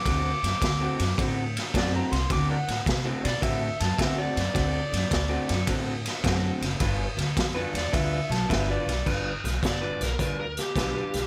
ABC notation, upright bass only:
X:1
M:4/4
L:1/8
Q:"Swing" 1/4=106
K:Ddor
V:1 name="Upright bass" clef=bass
D,, ^F,, D,, F,, A,,2 F,, C,, | D,, A,, C, B,, A,, ^F,, D,, F,, | D,, ^F,, D,, F,, A,,2 F,, ^F,,, | G,,, D,, F,, E,, D,, B,,, G,,, B,,, |
G,,, B,,, G,,, B,,, D,,2 B,,, B,,, |]